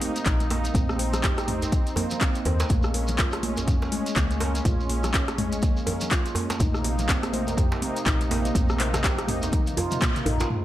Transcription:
Already playing: A#3 D#4
0.01 C4, open hi-hat, high conga
0.16 closed hi-hat, shekere
0.25 A#1 D#4, kick, clap, closed hi-hat, muted conga, shekere
0.40 closed hi-hat, high conga, shekere
0.50 A#3, open hi-hat, djembe slap
0.64 closed hi-hat, muted conga, shekere
0.74 A#1 C4, kick, closed hi-hat, mid tom, high conga, shekere
0.89 cross-stick, shekere
0.99 C5, open hi-hat, muted conga
1.12 cross-stick, closed hi-hat, high conga, low conga, shekere
1.24 G4, kick, clap, closed hi-hat, djembe slap, shekere
1.37 cross-stick, closed hi-hat, muted conga, shekere
1.48 C4, mid tom, open hi-hat, high conga
1.62 closed hi-hat, djembe tone, shekere
1.72 D#4, kick, closed hi-hat, muted conga, low conga, shekere
1.87 closed hi-hat, shekere
1.96 A#3, open hi-hat, djembe tone, low conga
2.10 closed hi-hat, low conga, shekere
2.21 C4, kick, clap, closed hi-hat, muted conga, shekere
2.35 closed hi-hat, shekere
2.45 D#2 C5, open hi-hat, djembe tone
2.60 closed hi-hat, djembe slap, muted conga, shekere
2.69 A#1 G#3 A#3 C#4, kick, closed hi-hat, mid tom, high conga, shekere
2.83 cross-stick, shekere
2.94 A#4, open hi-hat, muted conga
3.07 closed hi-hat, high conga, low conga, shekere
3.18 F4, kick, clap, closed hi-hat, djembe slap, shekere
3.32 cross-stick, closed hi-hat, muted conga, shekere
3.43 A#3, open hi-hat, high conga
3.57 closed hi-hat, high conga, djembe tone, shekere
3.67 C#4, kick, closed hi-hat, mid tom, muted conga, djembe tone, low conga, shekere
3.82 djembe slap, shekere
3.92 G#3, open hi-hat, high conga
4.06 closed hi-hat, shekere
4.16 C#2 A#3, kick, clap, closed hi-hat, muted conga, shekere
4.30 closed hi-hat, high conga, shekere
4.40 A#4, open hi-hat, djembe slap
4.54 closed hi-hat, muted conga, shekere
4.65 A#1 F4, kick, closed hi-hat, mid tom, high conga, shekere
4.80 shekere
4.89 A#3, open hi-hat, muted conga
5.04 cross-stick, closed hi-hat, high conga, low conga, shekere
5.14 C#4, kick, clap, closed hi-hat, djembe slap, shekere
5.28 cross-stick, closed hi-hat, muted conga, shekere
5.38 G#3, mid tom, open hi-hat, high conga
5.52 closed hi-hat, shekere
5.62 A#3, kick, closed hi-hat, muted conga, low conga, shekere
5.77 shekere
5.87 A#4, open hi-hat, djembe tone, low conga
6.01 closed hi-hat, low conga, shekere
6.11 F4, kick, clap, closed hi-hat, muted conga, shekere
6.26 closed hi-hat, shekere
6.35 A#3, open hi-hat, djembe tone
6.50 closed hi-hat, djembe slap, muted conga, shekere
6.60 A#1 C3 A#3 D#4, kick, closed hi-hat, mid tom, high conga, shekere
6.74 cross-stick, shekere
6.84 A#3, open hi-hat, muted conga
6.98 closed hi-hat, high conga, low conga, shekere
7.09 C4, kick, clap, closed hi-hat, djembe slap, shekere
7.23 cross-stick, closed hi-hat, muted conga, shekere
7.33 C5, open hi-hat, high conga
7.47 closed hi-hat, high conga, djembe tone, shekere
7.57 G4, kick, closed hi-hat, mid tom, muted conga, djembe tone, low conga, shekere
7.72 djembe slap, shekere
7.82 C4, open hi-hat, high conga
7.96 closed hi-hat, shekere
8.06 A#1 D#4, kick, clap, closed hi-hat, muted conga, shekere
8.21 closed hi-hat, high conga, shekere
8.31 A#3, open hi-hat, djembe slap
8.45 closed hi-hat, muted conga, shekere
8.55 A#1 C4, kick, closed hi-hat, mid tom, high conga, shekere
8.69 cross-stick, shekere
8.80 C5, clap, open hi-hat, muted conga
8.93 cross-stick, closed hi-hat, djembe slap, high conga, low conga, shekere
9.04 G4, kick, clap, closed hi-hat, djembe slap, shekere
9.18 cross-stick, closed hi-hat, muted conga, shekere
9.27 C4, mid tom, open hi-hat, high conga
9.42 closed hi-hat, djembe tone, shekere
9.52 D#4, kick, closed hi-hat, high tom, muted conga, low conga, shekere
9.67 closed hi-hat, high tom, shekere
9.77 F4, open hi-hat, djembe tone, low conga
9.91 closed hi-hat, mid tom, high conga, low conga, shekere
10.01 A#3, kick, clap, closed hi-hat, mid tom, muted conga, shekere
10.16 closed hi-hat, mid tom, shekere
10.26 A#1 D#4, mid tom, open hi-hat, djembe tone
10.40 F4, closed hi-hat, mid tom, muted conga, djembe slap, shekere
10.50 C#3 A#3 G#4 C5, sub drop, high conga

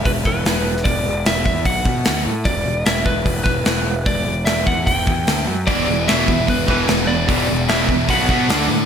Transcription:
0.05 E1 B4, kick, open hi-hat
0.25 E1 B4, kick
0.45 E1, snare, open hi-hat
0.77 snare
0.84 E1 D5, kick, open hi-hat
1.07 E1
1.26 E1 E5, snare, open hi-hat
1.46 E2 E5, kick
1.65 B1 F#5, kick, open hi-hat
1.85 B2, kick
2.05 D2, snare, open hi-hat
2.27 A2
2.45 E1 D5, kick, open hi-hat
2.66 E1
2.86 E1 E5, snare, open hi-hat
3.06 E1 B4, kick
3.26 E1, kick, open hi-hat
3.44 E1 B4, kick
3.65 E1, snare, open hi-hat
4.06 E1 D5, kick, open hi-hat
4.27 E1
4.45 E1 E5, snare, open hi-hat
4.67 E2 F#5, kick
4.86 E1 G5, kick, open hi-hat
5.07 E2, kick
5.27 D2, snare, open hi-hat
5.49 F#2
5.67 E1 E2 B2 E3 D5, kick, open hi-hat
5.87 E1 E2 B2
6.06 E1 E2 B2 E3 E5, snare, open hi-hat
6.27 E1 E2 B2, kick
6.47 E1 E2 B2 B4, kick, open hi-hat
6.67 E1 E2 B2 E3 B4, kick
6.88 E1 E2 B2 E3, snare, open hi-hat
7.07 E2 B2 D5
7.28 E1 E2 B2 E3, kick, open hi-hat
7.48 E1 E2 B2
7.68 E1 E2 B2 E3 E5, snare, open hi-hat
7.88 E2 B2, kick
8.08 B1 B2 F#3 B3 F#5, kick, open hi-hat
8.28 B2 F#3 B3, kick
8.47 D2 D3 A3 D4, snare, open hi-hat
8.68 A2 D3 A3

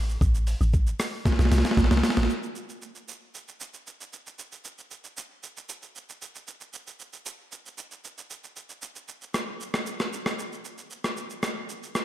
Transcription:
Already playing: A1
0.09 shaker
0.21 A1, kick, shaker
0.35 shaker
0.47 open hi-hat, shaker
0.61 A1, shaker
0.73 kick, shaker
0.87 shaker
1.00 cross-stick, open hi-hat, shaker
1.25 kick, snare, shaker
1.32 snare
1.39 B1, snare, shaker
1.45 snare
1.51 C2, snare, open hi-hat, shaker
1.58 snare
1.65 snare, shaker
1.71 snare
1.77 A1, kick, snare, shaker
1.84 snare
1.91 C2, snare, shaker
1.97 snare
2.03 snare, open hi-hat, shaker
2.10 snare
2.17 A1, snare, shaker
2.23 snare
2.30 shaker
2.43 shaker
2.55 shaker
2.69 shaker
2.82 shaker
2.95 shaker
3.08 shaker
3.34 shaker
3.48 shaker
3.60 shaker
3.74 shaker
3.87 shaker
4.01 shaker
4.13 shaker
4.26 shaker
4.39 shaker
4.52 shaker
4.64 shaker
4.78 shaker
4.91 shaker
5.04 shaker
5.17 shaker
5.43 shaker
5.57 shaker
5.69 shaker
5.82 shaker
5.95 shaker
6.09 shaker
6.22 shaker
6.35 shaker
6.47 shaker
6.61 shaker
6.73 shaker
6.87 shaker
6.99 shaker
7.13 shaker
7.26 shaker
7.52 shaker
7.66 shaker
7.78 shaker
7.91 shaker
8.04 shaker
8.18 shaker
8.30 shaker
8.44 shaker
8.56 shaker
8.69 shaker
8.82 shaker
8.96 shaker
9.08 shaker
9.21 shaker
9.34 cross-stick, shaker
9.60 shaker
9.74 cross-stick, shaker
9.86 shaker
10.00 cross-stick, shaker
10.13 shaker
10.26 cross-stick, shaker
10.39 shaker
10.52 shaker
10.65 shaker
10.78 shaker
10.90 shaker
11.04 cross-stick, shaker
11.17 shaker
11.30 shaker
11.43 cross-stick, shaker
11.69 shaker
11.83 shaker
11.95 cross-stick, shaker

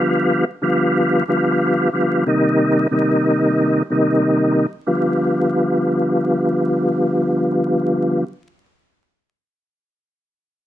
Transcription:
Already playing: D3
0.00 F3 G3 B3 F4
0.62 D3 F3 G3 B3 F4
1.28 D3 F3 G3 B3 F4
1.93 D3 F3 G3 B3 F4
2.26 C3 D#3 G3 A#3 D#4
2.91 C3 D#3 G3 A#3 D#4
3.90 C3 D#3 G3 A#3 D#4
4.86 D3 F3 G3 B3 F4

